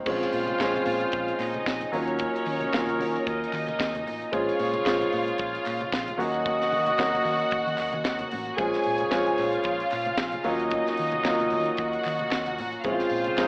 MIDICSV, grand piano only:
0, 0, Header, 1, 2, 480
1, 0, Start_track
1, 0, Key_signature, -5, "minor"
1, 0, Tempo, 532387
1, 62, Time_signature, 4, 2, 24, 8
1, 12150, End_track
2, 0, Start_track
2, 0, Title_t, "Grand piano"
2, 0, Program_c, 0, 0
2, 0, Control_c, 0, 64, 127
2, 52, Note_on_c, 0, 53, 78
2, 57, Note_on_c, 0, 56, 81
2, 61, Note_on_c, 0, 60, 77
2, 64, Note_on_c, 0, 61, 93
2, 73, Control_c, 0, 64, 0
2, 222, Control_c, 0, 64, 127
2, 442, Note_off_c, 0, 53, 0
2, 444, Note_off_c, 0, 56, 0
2, 447, Note_off_c, 0, 60, 0
2, 448, Note_off_c, 0, 61, 0
2, 542, Note_on_c, 0, 53, 81
2, 549, Note_on_c, 0, 56, 81
2, 551, Note_on_c, 0, 60, 78
2, 558, Note_on_c, 0, 61, 96
2, 1289, Note_off_c, 0, 53, 0
2, 1292, Note_off_c, 0, 56, 0
2, 1293, Note_off_c, 0, 60, 0
2, 1297, Note_off_c, 0, 61, 0
2, 1730, Note_on_c, 0, 54, 96
2, 1737, Note_on_c, 0, 61, 79
2, 1738, Note_on_c, 0, 58, 84
2, 1745, Note_on_c, 0, 65, 88
2, 1753, Control_c, 0, 64, 0
2, 1932, Control_c, 0, 64, 127
2, 2323, Note_off_c, 0, 54, 0
2, 2327, Note_off_c, 0, 58, 0
2, 2327, Note_off_c, 0, 61, 0
2, 2331, Note_off_c, 0, 65, 0
2, 2466, Note_on_c, 0, 54, 87
2, 2467, Note_on_c, 0, 58, 87
2, 2472, Note_on_c, 0, 61, 81
2, 2473, Note_on_c, 0, 65, 99
2, 3211, Note_off_c, 0, 54, 0
2, 3211, Note_off_c, 0, 58, 0
2, 3214, Note_off_c, 0, 61, 0
2, 3214, Note_off_c, 0, 65, 0
2, 3895, Note_on_c, 0, 56, 83
2, 3895, Note_on_c, 0, 72, 69
2, 3904, Note_on_c, 0, 61, 82
2, 3907, Note_on_c, 0, 65, 91
2, 3915, Control_c, 0, 64, 0
2, 4094, Control_c, 0, 64, 127
2, 4284, Note_off_c, 0, 56, 0
2, 4284, Note_off_c, 0, 72, 0
2, 4288, Note_off_c, 0, 61, 0
2, 4290, Note_off_c, 0, 65, 0
2, 4377, Note_on_c, 0, 56, 84
2, 4380, Note_on_c, 0, 72, 80
2, 4385, Note_on_c, 0, 61, 76
2, 4388, Note_on_c, 0, 65, 95
2, 5127, Note_off_c, 0, 56, 0
2, 5128, Note_off_c, 0, 72, 0
2, 5131, Note_off_c, 0, 61, 0
2, 5132, Note_off_c, 0, 65, 0
2, 5566, Note_on_c, 0, 54, 86
2, 5574, Note_on_c, 0, 58, 82
2, 5578, Note_on_c, 0, 61, 82
2, 5578, Note_on_c, 0, 66, 98
2, 5596, Control_c, 0, 64, 0
2, 5745, Control_c, 0, 64, 127
2, 6162, Note_off_c, 0, 54, 0
2, 6166, Note_off_c, 0, 58, 0
2, 6168, Note_off_c, 0, 61, 0
2, 6168, Note_off_c, 0, 66, 0
2, 6296, Note_on_c, 0, 54, 88
2, 6298, Note_on_c, 0, 58, 82
2, 6299, Note_on_c, 0, 61, 80
2, 6309, Note_on_c, 0, 66, 100
2, 7047, Note_off_c, 0, 54, 0
2, 7048, Note_off_c, 0, 58, 0
2, 7048, Note_off_c, 0, 61, 0
2, 7053, Note_off_c, 0, 66, 0
2, 7727, Note_on_c, 0, 56, 88
2, 7731, Note_on_c, 0, 72, 74
2, 7737, Note_on_c, 0, 65, 94
2, 7740, Note_on_c, 0, 61, 75
2, 7755, Control_c, 0, 64, 0
2, 7923, Control_c, 0, 64, 127
2, 8121, Note_off_c, 0, 56, 0
2, 8123, Note_off_c, 0, 72, 0
2, 8126, Note_off_c, 0, 65, 0
2, 8127, Note_off_c, 0, 61, 0
2, 8214, Note_on_c, 0, 56, 86
2, 8214, Note_on_c, 0, 72, 85
2, 8221, Note_on_c, 0, 61, 81
2, 8228, Note_on_c, 0, 65, 102
2, 8966, Note_off_c, 0, 56, 0
2, 8966, Note_off_c, 0, 72, 0
2, 8970, Note_off_c, 0, 61, 0
2, 8974, Note_off_c, 0, 65, 0
2, 9413, Note_on_c, 0, 54, 100
2, 9413, Note_on_c, 0, 58, 83
2, 9417, Note_on_c, 0, 61, 92
2, 9424, Note_on_c, 0, 65, 96
2, 9434, Control_c, 0, 64, 0
2, 9605, Control_c, 0, 64, 127
2, 10007, Note_off_c, 0, 54, 0
2, 10007, Note_off_c, 0, 58, 0
2, 10009, Note_off_c, 0, 61, 0
2, 10012, Note_off_c, 0, 65, 0
2, 10143, Note_on_c, 0, 54, 95
2, 10150, Note_on_c, 0, 58, 82
2, 10152, Note_on_c, 0, 61, 75
2, 10157, Note_on_c, 0, 65, 103
2, 10892, Note_off_c, 0, 54, 0
2, 10895, Note_off_c, 0, 58, 0
2, 10896, Note_off_c, 0, 61, 0
2, 10899, Note_off_c, 0, 65, 0
2, 11578, Note_on_c, 0, 56, 85
2, 11581, Note_on_c, 0, 60, 79
2, 11588, Note_on_c, 0, 64, 73
2, 11589, Note_on_c, 0, 61, 81
2, 11597, Control_c, 0, 64, 0
2, 11647, Note_on_c, 0, 65, 94
2, 11652, Note_off_c, 0, 64, 0
2, 11767, Control_c, 0, 64, 127
2, 11967, Note_off_c, 0, 56, 0
2, 11969, Note_off_c, 0, 60, 0
2, 11973, Note_off_c, 0, 61, 0
2, 12002, Note_off_c, 0, 65, 0
2, 12061, Note_on_c, 0, 56, 86
2, 12066, Note_on_c, 0, 60, 75
2, 12069, Note_on_c, 0, 61, 79
2, 12075, Note_on_c, 0, 63, 104
2, 12150, Note_off_c, 0, 56, 0
2, 12150, Note_off_c, 0, 60, 0
2, 12150, Note_off_c, 0, 61, 0
2, 12150, Note_off_c, 0, 63, 0
2, 12150, End_track
0, 0, End_of_file